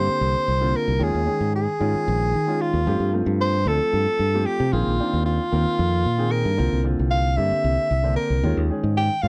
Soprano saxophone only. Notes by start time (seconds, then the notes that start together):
Already playing: C5
0.76 A#4
1.03 G#4
1.56 G#4
2.61 F4
3.41 C5
3.68 A4
4.46 G4
4.73 F4
5.26 F4
6.31 A#4
7.11 F5
7.37 E5
8.16 A#4
8.97 G5
9.22 F5